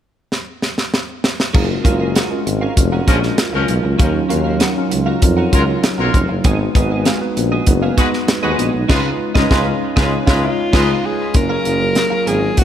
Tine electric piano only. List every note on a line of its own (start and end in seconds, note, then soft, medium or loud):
1.54 1.82 G#3 medium
1.54 1.82 C#4 medium
1.54 1.82 F4 medium
1.54 1.82 F#4 medium
1.54 1.82 A#4 medium
1.85 2.26 G#3 medium
1.85 2.26 C#4 medium
1.85 2.26 F4 medium
1.85 2.27 F#4 medium
1.85 2.27 A#4 medium
2.31 2.72 G#3 medium
2.31 2.72 C#4 medium
2.31 2.72 F4 medium
2.31 2.72 F#4 medium
2.31 2.72 A#4 medium
2.77 3.04 G#3 medium
2.77 3.04 C#4 medium
2.77 3.05 F4 medium
2.77 3.05 F#4 medium
2.77 3.05 A#4 medium
3.07 3.49 G#3 medium
3.07 3.49 C#4 medium
3.07 3.49 F4 medium
3.07 3.49 F#4 medium
3.07 3.49 A#4 medium
3.54 3.95 F#3 medium
3.54 3.95 G#3 medium
3.54 3.95 C#4 medium
3.54 3.95 F4 medium
3.54 3.95 A#4 medium
3.99 4.27 F#3 medium
3.99 4.27 C#4 medium
3.99 4.27 D#4 medium
3.99 4.27 F4 medium
3.99 4.27 A#4 medium
4.30 4.71 F#3 medium
4.30 4.71 C#4 medium
4.30 4.72 D#4 medium
4.30 4.72 F4 medium
4.30 4.72 A#4 medium
4.77 5.18 F#3 medium
4.77 5.18 C#4 medium
4.77 5.18 D#4 medium
4.77 5.18 F4 medium
4.77 5.18 A#4 medium
5.22 5.50 F#3 medium
5.22 5.50 C#4 medium
5.22 5.50 D#4 medium
5.22 5.50 F4 medium
5.22 5.50 A#4 medium
5.52 5.94 F#3 medium
5.52 5.94 C#4 medium
5.52 5.94 D#4 medium
5.52 5.94 F4 medium
5.52 5.94 A#4 medium
5.98 6.40 F#3 medium
5.98 6.40 C#4 medium
5.98 6.40 D#4 medium
5.98 6.40 F4 medium
5.98 6.40 A#4 medium
6.44 6.72 G#3 medium
6.44 6.72 B3 medium
6.44 6.72 D#4 medium
6.44 6.72 F#4 medium
6.44 6.72 B4 medium
6.75 7.17 G#3 medium
6.75 7.17 B3 medium
6.75 7.17 D#4 medium
6.75 7.17 F#4 medium
6.75 7.17 B4 medium
7.20 7.62 G#3 medium
7.20 7.62 B3 medium
7.20 7.62 D#4 medium
7.20 7.63 F#4 medium
7.20 7.63 B4 medium
7.67 7.94 G#3 medium
7.67 7.94 B3 medium
7.67 7.95 D#4 medium
7.67 7.95 F#4 medium
7.67 7.95 B4 medium
7.97 8.39 G#3 medium
7.97 8.39 B3 medium
7.97 8.39 D#4 medium
7.97 8.39 F#4 medium
7.97 8.39 B4 medium
8.43 8.84 G#3 medium
8.43 8.84 B3 medium
8.43 8.85 D#4 medium
8.43 8.85 F#4 medium
8.43 8.85 B4 medium
8.88 9.10 G#3 medium
8.88 9.10 C#4 medium
8.88 9.10 D#4 medium
8.88 9.10 F4 medium
8.88 9.11 B4 medium
9.35 9.48 G#3 loud
9.35 9.48 C#4 loud
9.35 9.49 D#4 loud
9.35 9.49 F4 medium
9.35 9.49 B4 medium
9.50 9.71 G#3 medium
9.50 9.72 C#4 medium
9.50 9.72 D#4 medium
9.50 9.72 F4 medium
9.50 9.72 B4 medium
9.96 10.17 G#3 medium
9.96 10.18 C#4 medium
9.96 10.18 D#4 medium
9.96 10.18 F4 medium
9.96 10.18 C#5 medium
10.26 10.48 G#3 medium
10.26 10.48 C#4 medium
10.26 10.48 D#4 medium
10.26 10.48 F4 medium
10.26 10.49 C#5 medium
10.73 10.94 G#3 medium
10.73 10.94 C#4 loud
10.73 10.94 D#4 medium
10.73 10.94 F4 medium
10.73 10.95 B4 loud
11.34 11.76 F#3 medium
11.34 11.76 A#3 medium
11.34 11.76 C#4 medium
11.34 11.76 F4 medium
11.34 11.76 G#4 medium
11.80 12.22 F#3 medium
11.80 12.22 A#3 medium
11.80 12.22 C#4 medium
11.80 12.23 F4 medium
11.80 12.23 G#4 medium
12.27 12.64 F#3 medium
12.27 12.64 A#3 medium
12.27 12.64 C#4 medium
12.27 12.64 F4 medium
12.27 12.34 G#4 medium
12.35 12.64 A#4 medium